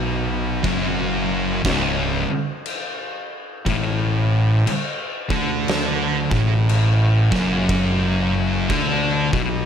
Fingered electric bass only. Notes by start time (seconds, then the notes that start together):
Already playing: B1
0.64 F#1
1.65 C#1
3.67 A1
4.68 muted fingered electric bass stroke
5.30 D2
6.32 A1
7.32 F#1
8.70 D2
9.33 B1